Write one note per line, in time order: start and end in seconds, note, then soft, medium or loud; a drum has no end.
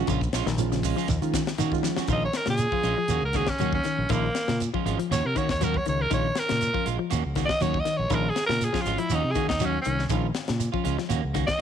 0.07 0.27 A#1 loud
0.07 0.27 C#3 medium
0.07 0.22 C#4 medium
0.07 0.21 F4 medium
0.07 muted clean electric guitar stroke medium
0.07 kick medium
0.07 closed hi-hat medium
0.07 shekere medium
0.21 muted clean electric guitar stroke soft
0.21 kick medium
0.21 shekere soft
0.33 0.43 A#1 medium
0.33 0.47 G#3 medium
0.33 0.46 C#4 medium
0.33 0.46 F4 loud
0.33 snare medium
0.33 closed hi-hat soft
0.33 shekere medium
0.46 0.93 A#1 medium
0.46 0.65 D#3 medium
0.46 muted clean electric guitar stroke soft
0.46 snare medium
0.46 shekere soft
0.58 0.94 D#3 medium
0.58 0.95 G#3 medium
0.58 0.95 C#4 medium
0.58 0.95 F4 loud
0.58 closed hi-hat medium
0.58 shekere medium
0.72 0.91 C#3 medium
0.72 muted clean electric guitar stroke soft
0.72 snare soft
0.72 closed hi-hat soft
0.72 shekere soft
0.83 0.97 G#3 medium
0.83 0.97 C#4 medium
0.83 0.96 F4 medium
0.83 kick medium
0.83 open hi-hat medium
0.83 shekere medium
0.96 1.15 F3 medium
0.96 1.09 G#3 medium
0.96 1.09 C#4 medium
0.96 1.09 F4 medium
0.96 shekere soft
1.08 1.19 D#2 loud
1.08 kick medium
1.08 snare soft
1.08 closed hi-hat medium
1.08 shekere medium
1.22 1.41 D#3 medium
1.22 1.50 D#3 medium
1.22 1.50 G#3 medium
1.22 1.50 C#4 medium
1.22 1.50 F4 medium
1.22 muted clean electric guitar stroke medium
1.22 closed hi-hat soft
1.22 shekere soft
1.34 1.52 D#3 medium
1.34 muted clean electric guitar stroke soft
1.34 kick medium
1.34 snare medium
1.34 closed hi-hat medium
1.34 shekere medium
1.47 snare medium
1.47 closed hi-hat soft
1.47 shekere soft
1.58 1.77 D#3 medium
1.58 1.88 D#3 medium
1.58 1.72 A#3 medium
1.58 1.72 C#4 medium
1.58 1.72 F#4 medium
1.58 snare soft
1.58 closed hi-hat medium
1.58 shekere medium
1.72 2.07 D#3 medium
1.72 2.07 G#3 medium
1.72 2.07 C#4 medium
1.72 2.07 F4 loud
1.72 muted clean electric guitar stroke soft
1.72 kick medium
1.72 shekere soft
1.83 2.02 F3 medium
1.83 muted clean electric guitar stroke soft
1.83 snare soft
1.83 shekere medium
1.97 2.09 C#4 soft
1.97 2.09 F#4 medium
1.97 muted fingered electric bass stroke soft
1.97 snare medium
1.97 shekere soft
2.08 2.27 A#1 medium
2.08 2.27 D#3 medium
2.08 2.25 G#3 medium
2.08 2.25 C#4 medium
2.08 2.25 F4 medium
2.08 kick medium
2.08 closed hi-hat medium
2.08 shekere medium
2.12 2.23 D#5 medium
2.25 2.38 C#5 medium
2.33 2.48 A#4 medium
2.33 muted clean electric guitar stroke soft
2.33 snare medium
2.33 closed hi-hat medium
2.33 shekere soft
2.46 2.66 A#2 medium
2.46 2.66 C#3 medium
2.46 muted clean electric guitar stroke soft
2.46 snare medium
2.46 closed hi-hat soft
2.50 3.22 G#4 medium
2.58 muted clean electric guitar stroke soft
2.58 closed hi-hat medium
2.58 shekere medium
2.72 2.91 F3 medium
2.72 2.82 C#4 soft
2.72 2.83 F4 soft
2.72 kick medium
2.83 2.94 A#1 medium
2.83 2.97 G#3 medium
2.83 2.96 C#4 medium
2.83 2.95 F4 medium
2.83 closed hi-hat soft
2.83 shekere soft
2.96 3.16 F3 medium
2.96 muted clean electric guitar stroke soft
3.08 3.19 D#2 medium
3.08 3.23 A#3 medium
3.08 3.22 C#4 medium
3.08 3.22 F#4 medium
3.08 closed hi-hat medium
3.08 shekere medium
3.22 3.41 C#2 medium
3.22 3.38 A#4 medium
3.22 muted clean electric guitar stroke soft
3.33 3.53 D#3 medium
3.33 3.48 A#3 medium
3.33 3.47 C#4 medium
3.33 3.47 F#4 medium
3.33 3.51 G#4 medium
3.33 kick medium
3.33 snare soft
3.33 closed hi-hat soft
3.33 shekere soft
3.47 3.73 C#4 medium
3.47 muted clean electric guitar stroke soft
3.47 kick medium
3.47 snare medium
3.58 3.79 D#2 medium
3.58 3.79 F#3 medium
3.58 3.75 A#3 medium
3.58 3.76 C#4 medium
3.58 3.76 F#4 medium
3.58 closed hi-hat medium
3.58 shekere medium
3.73 4.13 C#4 medium
3.73 kick medium
3.84 4.04 D#3 medium
3.84 muted clean electric guitar stroke soft
3.84 snare soft
3.84 closed hi-hat soft
3.84 shekere soft
3.98 4.07 A#1 medium
3.98 muted clean electric guitar stroke soft
4.09 4.29 A#1 medium
4.09 4.28 D#3 medium
4.09 4.26 F3 medium
4.09 4.26 G#3 medium
4.09 4.59 A#3 medium
4.09 4.26 C#4 medium
4.09 4.26 F4 medium
4.09 kick medium
4.09 closed hi-hat medium
4.09 shekere medium
4.35 muted clean electric guitar stroke soft
4.35 snare medium
4.35 closed hi-hat soft
4.35 shekere soft
4.48 4.68 A#2 loud
4.48 4.67 C#3 medium
4.48 muted clean electric guitar stroke soft
4.48 snare medium
4.60 muted clean electric guitar stroke soft
4.60 closed hi-hat medium
4.60 shekere medium
4.74 4.92 F3 medium
4.74 4.85 G#3 soft
4.74 4.84 C#4 medium
4.74 4.85 F4 medium
4.74 kick medium
4.85 4.95 G#1 medium
4.85 4.99 F3 medium
4.85 4.98 G#3 medium
4.85 4.98 C#4 medium
4.85 4.98 F4 medium
4.85 closed hi-hat soft
4.85 shekere soft
4.99 5.17 F3 medium
4.99 muted clean electric guitar stroke soft
4.99 closed hi-hat medium
5.11 5.21 D#2 loud
5.11 5.24 D#3 medium
5.11 5.24 A#3 medium
5.11 5.23 C#4 medium
5.11 5.23 F#4 medium
5.11 5.28 C#5 medium
5.11 snare soft
5.11 closed hi-hat medium
5.11 shekere medium
5.24 5.33 C3 medium
5.24 5.39 A#4 medium
5.24 muted clean electric guitar stroke soft
5.35 5.54 D#3 medium
5.35 5.49 D#3 medium
5.35 5.49 A#3 medium
5.35 5.48 C#4 medium
5.35 5.48 F#4 medium
5.35 5.49 C#5 medium
5.35 muted fingered electric bass stroke soft
5.35 kick medium
5.35 closed hi-hat soft
5.35 shekere soft
5.49 5.77 D#2 medium
5.49 5.65 C#5 medium
5.49 muted clean electric guitar stroke soft
5.49 kick medium
5.49 snare medium
5.61 5.76 D#3 medium
5.61 5.80 F#3 medium
5.61 5.76 A#3 medium
5.61 5.77 C#4 medium
5.61 5.77 F#4 medium
5.61 5.78 A#4 medium
5.61 closed hi-hat medium
5.61 shekere medium
5.74 5.86 C#5 medium
5.74 kick medium
5.86 6.06 C#2 medium
5.86 6.05 D#3 medium
5.86 6.03 C#5 medium
5.86 muted clean electric guitar stroke soft
5.86 closed hi-hat soft
5.86 shekere soft
5.99 6.11 A#4 medium
5.99 muted clean electric guitar stroke soft
6.10 6.30 A#1 loud
6.10 6.29 D#3 medium
6.10 6.26 G#3 medium
6.10 6.26 C#4 medium
6.10 6.26 F4 medium
6.10 6.40 C#5 medium
6.10 kick medium
6.10 closed hi-hat medium
6.10 shekere medium
6.35 6.86 A#4 loud
6.35 muted clean electric guitar stroke soft
6.35 snare medium
6.35 closed hi-hat medium
6.35 shekere soft
6.49 6.69 A#2 medium
6.49 6.68 C#3 medium
6.49 muted clean electric guitar stroke soft
6.49 snare medium
6.49 closed hi-hat medium
6.61 muted clean electric guitar stroke soft
6.61 closed hi-hat medium
6.61 shekere medium
6.73 6.93 F3 medium
6.73 6.86 C#4 soft
6.73 6.85 F4 medium
6.73 kick medium
6.85 6.97 A#1 medium
6.85 6.99 G#3 medium
6.85 6.97 F4 medium
6.85 closed hi-hat medium
6.85 shekere soft
6.99 7.18 F3 medium
6.99 muted clean electric guitar stroke soft
7.10 7.22 D#2 loud
7.10 7.24 A#3 medium
7.10 7.24 C#4 medium
7.10 7.23 F#4 medium
7.10 muted clean electric guitar stroke medium
7.10 closed hi-hat medium
7.10 shekere medium
7.24 7.44 C#2 medium
7.24 muted clean electric guitar stroke soft
7.35 7.55 D#3 medium
7.35 7.49 D#3 medium
7.35 7.49 A#3 medium
7.35 7.48 C#4 medium
7.35 7.48 F#4 medium
7.35 kick medium
7.35 snare soft
7.35 closed hi-hat soft
7.35 shekere soft
7.45 7.64 D#5 loud
7.45 kick medium
7.49 muted clean electric guitar stroke soft
7.49 snare medium
7.60 7.80 D#2 medium
7.60 7.76 D#3 medium
7.60 7.80 F#3 medium
7.60 7.77 C#4 medium
7.60 7.77 F#4 medium
7.60 7.82 C#5 medium
7.60 muted clean electric guitar stroke medium
7.60 closed hi-hat medium
7.60 shekere medium
7.74 kick medium
7.80 7.98 D#5 medium
7.85 8.04 D#3 medium
7.85 muted clean electric guitar stroke soft
7.85 snare soft
7.85 closed hi-hat soft
7.85 shekere soft
7.97 8.08 A#1 medium
7.97 8.15 C#5 medium
7.97 muted clean electric guitar stroke soft
8.10 8.30 A#1 loud
8.10 8.29 D#3 medium
8.10 8.26 G#3 medium
8.10 8.26 C#4 medium
8.10 8.26 F4 medium
8.10 kick medium
8.10 closed hi-hat medium
8.10 shekere medium
8.14 8.31 A#4 medium
8.30 8.45 G#4 medium
8.35 muted clean electric guitar stroke soft
8.35 snare medium
8.35 closed hi-hat soft
8.35 shekere soft
8.46 8.68 A#2 medium
8.46 8.68 C#3 medium
8.46 8.66 A#4 loud
8.46 muted clean electric guitar stroke soft
8.46 snare medium
8.60 muted clean electric guitar stroke soft
8.60 closed hi-hat medium
8.60 shekere medium
8.64 8.83 G#4 medium
8.73 8.92 F3 medium
8.73 8.85 C#4 soft
8.73 8.86 F4 soft
8.73 kick medium
8.73 snare medium
8.81 9.00 F4 medium
8.86 8.96 G#1 loud
8.86 8.99 G#3 medium
8.86 8.99 C#4 medium
8.86 8.98 F4 medium
8.86 snare soft
8.86 closed hi-hat soft
8.86 shekere soft
8.98 9.17 F3 medium
8.98 9.16 E4 medium
8.98 muted clean electric guitar stroke soft
8.98 closed hi-hat soft
9.10 9.21 D#2 medium
9.10 9.24 D#3 medium
9.10 9.23 A#3 medium
9.10 9.23 C#4 medium
9.10 9.23 F#4 medium
9.10 closed hi-hat medium
9.10 shekere medium
9.15 9.33 D#4 medium
9.24 9.33 C3 medium
9.24 muted clean electric guitar stroke soft
9.31 9.49 D#3 medium
9.31 9.46 G#4 medium
9.31 shekere soft
9.35 9.54 D#3 medium
9.35 9.49 A#3 medium
9.35 9.48 C#4 medium
9.35 9.48 F#4 medium
9.35 muted fingered electric bass stroke soft
9.35 kick medium
9.35 closed hi-hat medium
9.48 9.77 D#2 medium
9.48 9.66 D#4 medium
9.48 muted clean electric guitar stroke soft
9.48 kick medium
9.48 snare medium
9.60 9.76 D#3 medium
9.60 9.80 F#3 medium
9.60 9.77 A#3 medium
9.60 9.77 C#4 medium
9.60 9.77 F#4 medium
9.60 closed hi-hat medium
9.60 shekere medium
9.65 9.79 C#4 medium
9.81 10.04 C#4 medium
9.81 muted clean electric guitar stroke soft
9.81 closed hi-hat soft
9.81 shekere soft
9.86 10.05 C2 medium
9.86 10.05 D#3 medium
9.99 muted clean electric guitar stroke soft
9.99 snare soft
10.09 10.30 A#1 loud
10.09 10.30 D#3 medium
10.09 10.26 G#3 medium
10.09 10.26 C#4 medium
10.09 10.26 F4 medium
10.09 kick loud
10.09 closed hi-hat medium
10.09 shekere medium
10.34 muted clean electric guitar stroke soft
10.34 snare medium
10.34 closed hi-hat soft
10.34 shekere soft
10.48 10.68 A#2 medium
10.48 10.68 C#3 medium
10.48 muted clean electric guitar stroke soft
10.48 snare medium
10.48 closed hi-hat soft
10.60 muted clean electric guitar stroke soft
10.60 closed hi-hat medium
10.60 shekere medium
10.72 10.92 F3 medium
10.72 10.83 C#4 soft
10.72 10.84 F4 medium
10.72 kick medium
10.84 10.96 C#2 medium
10.84 10.98 G#3 medium
10.84 10.97 C#4 medium
10.84 10.97 F4 medium
10.84 closed hi-hat medium
10.84 shekere soft
10.98 11.17 F3 medium
10.98 muted clean electric guitar stroke soft
10.98 snare soft
11.09 11.21 D#2 medium
11.09 11.23 A#3 medium
11.09 11.22 C#4 medium
11.09 11.21 F#4 medium
11.09 closed hi-hat medium
11.09 shekere medium
11.22 11.43 C#2 medium
11.22 muted clean electric guitar stroke soft
11.34 11.54 D#3 medium
11.34 11.48 A#3 medium
11.34 11.46 C#4 medium
11.34 11.45 F#4 medium
11.34 kick medium
11.34 snare soft
11.34 closed hi-hat medium
11.34 shekere soft
11.46 11.61 D#5 loud
11.46 muted clean electric guitar stroke soft
11.46 kick medium
11.46 snare medium